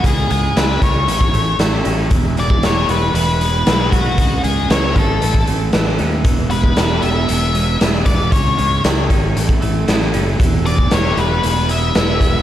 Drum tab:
HH |x-x-x-x-x-x-x-x-|x-x-x-x-x-x-x-x-|x-x-x-x-x-x-x-x-|x-x-x-x-x-x-x-x-|
SD |----o-------o---|----o-------o---|----o-------o---|----o-------o---|
BD |o-----o--o------|o--o----------o-|o-----o--o------|o--o----------o-|

HH |x-x-x-x-x-x-x-x-|x-x-x-x-x-x-x-x-|
SD |----o-------o---|----o-------o---|
BD |o-----o--o------|o--o----------o-|